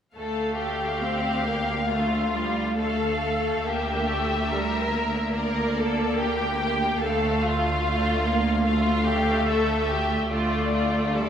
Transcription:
0.15 3.61 D2 soft
0.15 0.99 A3 soft
0.15 0.57 A4 soft
0.15 2.74 F5 soft
0.59 1.87 G4 soft
1.02 1.46 C4 soft
1.46 1.90 A#3 soft
1.90 2.34 A3 soft
1.90 2.76 F4 soft
2.34 2.78 G3 soft
2.77 3.64 A3 soft
2.77 3.63 A4 soft
2.77 3.64 F5 soft
3.64 6.98 D2 soft
3.64 4.08 A#3 soft
3.64 4.51 G4 soft
3.64 5.34 E5 soft
4.08 4.51 A3 soft
4.51 4.92 G3 soft
4.51 5.32 A#4 soft
4.91 7.02 A#3 soft
5.33 5.76 A#4 soft
5.33 6.20 D5 soft
5.77 6.20 A4 soft
6.19 6.60 G4 soft
6.19 7.02 G5 soft
6.61 7.01 G4 soft
7.02 10.26 D2 soft
7.02 7.81 A3 soft
7.02 7.43 A4 soft
7.02 8.62 F5 soft
7.43 8.64 F4 soft
7.83 8.23 A3 soft
8.24 8.65 A#3 soft
8.64 10.29 A3 soft
8.64 9.05 F4 soft
8.64 9.45 F5 soft
9.06 9.47 G4 soft
9.46 9.88 A4 soft
9.46 10.30 E5 soft
9.89 10.31 G4 soft
10.29 11.29 D2 soft
10.29 11.14 A3 soft
10.29 10.73 F4 soft
10.29 11.14 D5 soft
10.74 11.15 F4 soft
11.15 11.29 G3 soft
11.15 11.29 A4 soft
11.15 11.29 D5 soft

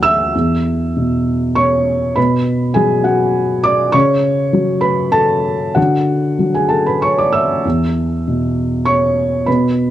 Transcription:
0.00 0.29 D2 medium
0.00 0.30 D3 medium
0.00 0.34 F#3 soft
0.00 0.36 F#4 medium
0.00 1.53 E5 medium
0.00 0.35 F#5 medium
0.00 1.56 E6 loud
0.35 2.13 E2 soft
0.96 2.16 B2 soft
1.55 2.13 C#5 medium
1.55 2.16 C#6 medium
2.16 3.90 B2 soft
2.16 2.73 B4 soft
2.16 2.76 B5 medium
2.74 3.94 F#3 soft
2.74 3.03 G#4 medium
2.74 3.05 G#5 medium
3.04 3.60 F#4 soft
3.04 3.64 F#5 medium
3.64 3.92 D5 medium
3.64 3.93 D6 medium
3.92 5.72 C#3 medium
3.92 4.80 C#5 medium
3.92 4.83 C#6 medium
4.53 5.76 F#3 soft
4.81 5.11 B4 medium
4.81 5.13 B5 medium
5.12 5.72 A4 medium
5.12 5.75 A5 medium
5.75 7.60 D3 soft
5.75 6.50 F#4 medium
5.75 6.54 F#5 medium
6.39 7.64 F#3 soft
6.54 6.70 G#4 soft
6.54 6.70 G#5 medium
6.69 6.85 A4 soft
6.69 6.85 A5 medium
6.86 7.01 B4 soft
6.86 7.02 B5 medium
7.02 7.17 C#5 medium
7.02 7.17 C#6 medium
7.18 7.33 D5 soft
7.18 7.33 D6 medium
7.33 8.82 E5 soft
7.33 8.86 E6 medium
7.65 9.43 E2 soft
8.28 9.46 B2 soft
8.85 9.43 C#5 medium
8.85 9.46 C#6 medium
9.46 9.90 B2 soft
9.46 9.90 B4 soft
9.46 9.90 B5 medium

